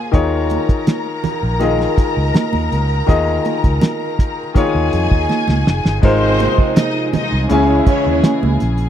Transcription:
0.00 0.15 A#3 medium
0.00 0.13 F4 medium
0.00 0.12 G#4 medium
0.00 0.14 G#4 medium
0.00 0.15 C5 medium
0.00 0.16 D#5 medium
0.00 0.12 G#5 medium
0.12 0.56 D#2 medium
0.12 1.43 D#3 medium
0.12 1.43 D#4 medium
0.12 1.43 F4 medium
0.12 1.44 G#4 medium
0.12 4.52 A#4 medium
0.12 1.44 C#5 medium
0.12 4.52 A#5 medium
0.12 kick loud
0.12 closed hi-hat medium
0.50 closed hi-hat medium
0.50 muted conga soft
0.69 muted fingered electric bass stroke soft
0.69 kick medium
0.69 closed hi-hat soft
0.87 snare loud
0.87 closed hi-hat loud
0.87 high conga medium
1.24 muted fingered electric bass stroke soft
1.24 closed hi-hat medium
1.24 low conga medium
1.43 1.85 A#1 medium
1.59 2.90 D#3 medium
1.59 2.90 D#4 medium
1.59 2.91 F4 medium
1.59 2.91 G#4 medium
1.59 2.92 D#5 medium
1.59 closed hi-hat medium
1.59 muted conga soft
1.81 snare soft
1.98 muted fingered electric bass stroke soft
1.98 kick medium
1.98 closed hi-hat medium
2.17 2.31 C#2 medium
2.35 snare loud
2.35 closed hi-hat medium
2.35 high conga medium
2.53 2.68 D#2 medium
2.53 high conga medium
2.72 3.00 C#2 medium
2.72 closed hi-hat medium
3.07 3.37 D#2 loud
3.07 4.37 D#3 medium
3.07 4.38 D#4 medium
3.07 4.38 F4 medium
3.07 4.38 G#4 medium
3.07 4.39 D#5 loud
3.07 kick loud
3.07 closed hi-hat medium
3.45 closed hi-hat medium
3.45 muted conga soft
3.64 3.78 C#2 medium
3.64 kick medium
3.64 closed hi-hat soft
3.81 snare loud
3.81 closed hi-hat loud
3.81 high conga medium
4.19 kick medium
4.19 closed hi-hat medium
4.54 5.85 D#3 medium
4.54 5.85 D#4 medium
4.54 5.86 F4 medium
4.54 6.00 G#4 medium
4.54 5.86 G#4 medium
4.54 5.86 C#5 medium
4.54 6.00 G#5 medium
4.54 kick medium
4.54 closed hi-hat medium
4.54 muted conga soft
4.75 4.89 D#2 medium
4.93 5.07 F2 medium
4.93 closed hi-hat medium
5.11 5.26 D#2 medium
5.11 kick medium
5.29 snare medium
5.29 high conga medium
5.48 5.63 C#2 medium
5.48 snare medium
5.48 high conga medium
5.66 5.81 F1 medium
5.66 snare medium
5.85 5.99 G1 medium
5.85 snare medium
6.02 6.46 G#1 loud
6.02 7.11 C3 medium
6.02 7.49 C3 medium
6.02 7.50 F3 medium
6.02 7.32 G#3 medium
6.02 7.11 G#3 medium
6.02 8.89 G#3 medium
6.02 6.73 C4 loud
6.02 7.33 D#4 medium
6.02 7.11 D#4 medium
6.02 7.50 D#4 medium
6.02 7.33 F4 medium
6.02 8.89 G#4 medium
6.02 7.33 A#4 medium
6.02 6.73 C5 loud
6.02 7.34 C5 medium
6.02 kick loud
6.02 crash medium
6.39 closed hi-hat medium
6.39 muted conga soft
6.58 muted fingered electric bass stroke soft
6.58 kick medium
6.76 7.06 D#4 medium
6.76 7.06 D#5 medium
6.76 snare loud
6.76 closed hi-hat loud
6.76 high conga medium
7.13 7.43 D#4 medium
7.13 7.43 D#5 loud
7.13 muted fingered electric bass stroke soft
7.13 closed hi-hat medium
7.13 muted conga soft
7.13 low conga medium
7.32 7.46 C2 medium
7.49 7.79 C#2 loud
7.49 8.80 C#3 medium
7.49 8.59 C#3 medium
7.49 8.89 C#3 medium
7.49 8.89 E3 medium
7.49 8.59 G#3 medium
7.49 8.80 C#4 medium
7.49 7.80 C#4 medium
7.49 8.58 E4 medium
7.49 8.80 E4 medium
7.49 8.89 E4 medium
7.49 8.81 G#4 medium
7.49 7.80 C#5 medium
7.49 8.81 G#5 medium
7.49 closed hi-hat medium
7.49 muted conga medium
7.86 8.16 C#4 loud
7.86 8.16 C#5 loud
7.86 kick medium
7.86 closed hi-hat medium
8.06 8.20 D#2 medium
8.24 snare loud
8.24 closed hi-hat medium
8.24 high conga medium
8.43 8.57 C#2 medium
8.43 high conga medium
8.60 8.89 A#1 loud
8.60 snare soft
8.60 closed hi-hat medium
8.78 closed hi-hat soft

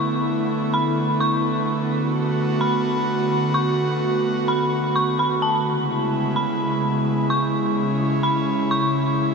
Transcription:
0.00 5.62 D3 medium
0.00 5.62 A3 medium
0.00 7.49 B3 medium
0.00 1.87 E4 medium
0.74 1.18 B5 medium
1.20 1.43 C#6 medium
1.91 5.62 F#4 medium
2.61 3.51 B5 medium
3.54 3.77 C#6 medium
4.48 4.92 B5 medium
4.96 5.18 C#6 medium
5.19 5.41 B5 medium
5.42 5.65 A5 medium
5.66 9.34 C#3 medium
5.66 9.34 G#3 medium
5.66 9.34 E4 medium
6.36 7.26 B5 medium
7.30 7.52 C#6 medium
7.53 9.34 C#4 medium
8.23 8.68 B5 medium
8.71 8.93 C#6 medium

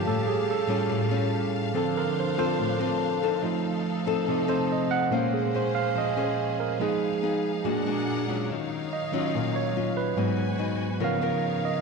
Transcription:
0.00 0.66 G3 medium
0.00 0.66 C#4 medium
0.00 0.66 F4 medium
0.00 1.71 G4 medium
0.00 5.07 F5 medium
0.00 1.71 A5 medium
0.05 0.88 A2 medium
0.05 1.73 C#4 medium
0.05 0.27 A4 medium
0.27 0.47 G#4 medium
0.51 0.88 A4 medium
0.67 1.28 A2 soft
0.67 1.07 G3 medium
0.67 1.29 G3 soft
0.67 1.29 C#4 soft
0.67 1.08 C#4 medium
0.67 1.08 F4 medium
0.89 1.72 A2 medium
1.11 1.71 G3 medium
1.11 1.71 C#4 medium
1.11 1.71 F4 medium
1.74 3.39 D3 soft
1.74 2.56 D3 medium
1.74 3.39 F3 soft
1.74 2.34 C4 medium
1.74 3.39 C4 soft
1.74 3.42 D4 medium
1.74 2.34 F4 medium
1.74 2.34 A4 medium
1.74 1.96 A4 medium
1.74 3.42 C5 medium
1.97 2.17 A#4 medium
2.20 2.38 C5 medium
2.38 2.76 C4 medium
2.38 2.76 F4 medium
2.38 2.77 A4 medium
2.38 2.97 C5 medium
2.58 3.41 A2 medium
2.79 3.18 C4 medium
2.79 3.18 F4 medium
2.79 3.19 A4 medium
3.23 4.03 C4 medium
3.23 4.03 D#4 medium
3.23 4.04 A4 medium
3.42 4.03 F3 soft
3.42 4.25 F3 medium
3.42 4.03 A3 soft
3.42 4.03 D#4 medium
3.42 5.11 D#4 medium
3.42 5.10 A4 medium
4.07 4.45 C4 medium
4.07 4.45 D#4 medium
4.07 4.45 A4 medium
4.28 5.10 C3 medium
4.28 4.49 A4 medium
4.47 5.08 C4 medium
4.47 5.08 D#4 medium
4.47 5.08 A4 medium
4.47 4.69 C5 medium
4.72 4.91 D#5 medium
4.91 5.11 F#5 medium
5.10 5.71 A#2 soft
5.10 5.71 G#3 soft
5.10 5.94 A#3 medium
5.10 6.79 A#3 medium
5.10 6.78 C#4 medium
5.10 5.72 C#4 soft
5.10 5.39 C#4 medium
5.10 7.62 G#4 medium
5.10 5.39 G#4 medium
5.10 6.79 C5 medium
5.10 5.39 C5 medium
5.10 5.33 F5 medium
5.33 5.53 G#4 soft
5.55 6.14 C#4 medium
5.55 6.14 G#4 medium
5.55 6.15 C5 medium
5.55 5.75 C5 medium
5.75 5.95 F5 medium
5.95 6.78 F3 medium
5.95 6.56 D#5 medium
6.17 6.77 C#4 medium
6.17 6.77 G#4 medium
6.17 6.77 C5 medium
6.60 6.80 A#4 medium
6.79 7.60 F3 soft
6.79 7.63 F3 medium
6.79 7.61 G#3 soft
6.79 7.08 B3 medium
6.79 7.64 D#4 medium
6.79 7.61 D#4 medium
6.79 7.08 D#4 soft
6.79 7.08 G#4 medium
6.79 8.04 G#4 medium
6.79 7.64 F5 medium
7.23 7.51 B3 medium
7.23 7.51 D#4 medium
7.23 7.51 G#4 medium
7.64 8.45 A#2 soft
7.64 8.47 A#2 medium
7.64 8.45 G#3 soft
7.64 7.82 G#3 medium
7.64 7.83 D4 medium
7.64 8.45 D4 medium
7.64 8.49 D4 medium
7.64 7.83 F#4 medium
7.64 8.49 G#4 medium
7.64 8.49 A#4 medium
7.64 8.49 F#5 medium
7.86 8.25 G#3 medium
7.86 8.25 D4 medium
7.86 8.25 F#4 medium
8.28 8.88 F#3 medium
8.28 8.88 C#4 medium
8.28 8.89 F4 medium
8.50 9.32 D#3 medium
8.50 10.17 D#4 medium
8.50 10.17 C#5 medium
8.50 10.17 F5 medium
8.93 9.51 D#5 medium
9.12 10.14 D#3 soft
9.12 10.14 F#3 soft
9.12 9.73 F#3 medium
9.12 10.14 C#4 soft
9.12 9.73 C#4 medium
9.12 9.73 F4 medium
9.34 10.16 A#2 medium
9.56 9.94 C#5 medium
9.76 10.16 F#3 soft
9.76 10.16 C#4 soft
9.76 10.17 F4 medium
9.97 10.36 B4 medium
10.16 10.45 G#2 soft
10.16 11.00 G#2 medium
10.16 10.45 F#3 soft
10.16 10.45 B3 medium
10.16 10.45 D#4 medium
10.16 11.02 F#4 medium
10.16 11.01 B4 medium
10.16 11.02 G#5 medium
10.58 10.87 F#3 medium
10.58 10.88 B3 medium
10.58 10.88 D#4 medium
11.00 11.81 C#3 medium
11.00 11.61 C#3 soft
11.00 11.62 F3 soft
11.00 11.19 B3 medium
11.00 11.62 B3 soft
11.00 11.81 D#4 medium
11.00 11.19 F4 medium
11.00 11.19 A#4 medium
11.00 11.81 A#4 medium
11.00 11.81 C#5 medium
11.00 11.81 F5 medium
11.00 11.63 F5 medium
11.21 11.81 B3 medium
11.21 11.81 F4 medium
11.21 11.81 A#4 medium
11.65 11.81 D#5 medium

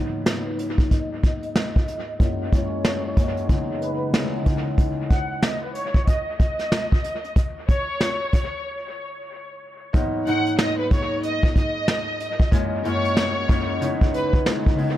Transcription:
0.00 2.25 G#2 medium
0.00 2.25 F#3 medium
0.00 2.19 A#3 medium
0.00 2.25 B3 medium
0.00 2.26 D#4 loud
0.00 0.23 F#5 medium
0.26 0.45 D#5 medium
0.26 snare loud
0.26 closed hi-hat medium
0.47 0.58 B4 medium
0.59 0.89 C#5 medium
0.59 closed hi-hat medium
0.78 kick loud
0.78 closed hi-hat medium
0.91 1.20 D#5 medium
0.91 kick medium
0.91 closed hi-hat medium
1.23 2.16 D#5 medium
1.23 kick medium
1.23 closed hi-hat medium
1.43 closed hi-hat medium
1.56 snare loud
1.56 closed hi-hat medium
1.76 kick medium
1.88 closed hi-hat medium
2.19 2.51 F#2 medium
2.19 2.51 G#3 medium
2.19 2.50 A#3 medium
2.19 2.50 C#4 medium
2.19 2.51 E4 loud
2.19 kick loud
2.19 closed hi-hat medium
2.52 3.15 F#2 medium
2.52 3.15 G#3 medium
2.52 3.00 A#3 medium
2.52 3.00 C#4 medium
2.52 3.00 E4 loud
2.52 3.46 C#5 medium
2.52 kick medium
2.52 closed hi-hat medium
2.84 snare loud
2.84 closed hi-hat medium
3.16 3.54 F#2 medium
3.16 3.47 G#3 medium
3.16 3.47 A#3 medium
3.16 3.47 C#4 medium
3.16 3.48 E4 medium
3.16 kick loud
3.16 closed hi-hat medium
3.37 closed hi-hat medium
3.48 4.12 C#3 medium
3.48 4.12 G#3 medium
3.48 4.10 B3 medium
3.48 4.10 D#4 medium
3.48 4.10 E4 loud
3.48 kick medium
3.48 closed hi-hat medium
3.82 4.00 B4 medium
3.82 closed hi-hat medium
4.13 4.44 C#3 medium
4.13 4.44 G#3 medium
4.13 4.44 B3 medium
4.13 4.44 D#4 medium
4.13 4.44 E4 medium
4.13 snare loud
4.13 closed hi-hat medium
4.45 4.83 C#3 medium
4.45 4.83 G#3 medium
4.45 4.76 B3 medium
4.45 4.76 D#4 medium
4.45 4.76 E4 medium
4.45 kick medium
4.45 closed hi-hat medium
4.78 kick loud
4.78 closed hi-hat medium
5.10 5.39 F#5 medium
5.10 kick medium
5.10 closed hi-hat medium
5.42 5.61 D#5 medium
5.42 snare loud
5.42 closed hi-hat medium
5.63 5.74 B4 medium
5.74 6.04 C#5 medium
5.74 closed hi-hat medium
5.94 kick medium
6.07 6.37 D#5 medium
6.07 kick medium
6.07 closed hi-hat medium
6.40 7.32 D#5 medium
6.40 kick medium
6.40 closed hi-hat medium
6.59 snare soft
6.59 closed hi-hat soft
6.72 snare loud
6.72 closed hi-hat loud
6.92 kick medium
7.04 closed hi-hat medium
7.24 closed hi-hat soft
7.36 kick loud
7.36 closed hi-hat medium
7.69 8.62 C#5 medium
7.69 kick medium
7.69 closed hi-hat medium
8.00 snare loud
8.00 closed hi-hat medium
8.33 kick loud
8.33 closed hi-hat medium
9.93 10.26 G#2 loud
9.93 10.26 F#3 medium
9.93 10.24 A#3 medium
9.93 10.25 B3 medium
9.93 10.25 D#4 loud
9.93 kick loud
9.93 closed hi-hat medium
10.26 12.57 G#2 medium
10.26 12.57 F#3 medium
10.26 12.51 A#3 medium
10.26 12.58 B3 medium
10.26 12.59 D#4 loud
10.26 10.56 F#5 medium
10.26 closed hi-hat medium
10.47 closed hi-hat medium
10.58 10.77 D#5 medium
10.58 snare loud
10.58 closed hi-hat medium
10.79 10.90 B4 medium
10.91 11.21 C#5 medium
10.91 kick loud
10.91 closed hi-hat medium
11.23 11.52 D#5 medium
11.23 closed hi-hat medium
11.43 kick medium
11.55 12.48 D#5 medium
11.55 kick medium
11.55 closed hi-hat medium
11.88 snare loud
11.88 closed hi-hat medium
12.20 closed hi-hat medium
12.40 kick medium
12.51 12.83 F#2 medium
12.51 12.83 G#3 medium
12.51 12.83 A#3 medium
12.51 12.83 C#4 medium
12.51 12.83 E4 loud
12.51 kick loud
12.51 closed hi-hat medium
12.84 13.47 F#2 medium
12.84 13.48 G#3 medium
12.84 13.32 A#3 medium
12.84 13.32 C#4 medium
12.84 13.33 E4 loud
12.84 13.78 C#5 medium
12.84 closed hi-hat medium
13.05 closed hi-hat medium
13.16 snare loud
13.16 closed hi-hat medium
13.48 13.86 F#2 medium
13.48 13.80 G#3 medium
13.48 13.79 A#3 medium
13.48 13.80 C#4 medium
13.48 13.80 E4 loud
13.48 kick loud
13.48 closed hi-hat medium
13.80 14.44 C#3 medium
13.80 14.44 G#3 medium
13.80 14.42 B3 medium
13.80 14.42 D#4 medium
13.80 14.42 E4 loud
13.80 closed hi-hat medium
14.01 kick medium
14.14 14.32 B4 medium
14.14 closed hi-hat medium
14.33 kick loud
14.45 14.76 C#3 medium
14.45 14.76 G#3 medium
14.45 14.76 B3 medium
14.45 14.76 D#4 medium
14.45 14.77 E4 medium
14.45 snare loud
14.45 closed hi-hat medium
14.66 kick medium
14.77 14.97 C#3 medium
14.77 14.97 G#3 medium
14.77 14.97 B3 medium
14.77 14.97 D#4 medium
14.77 14.97 E4 medium
14.77 open hi-hat medium

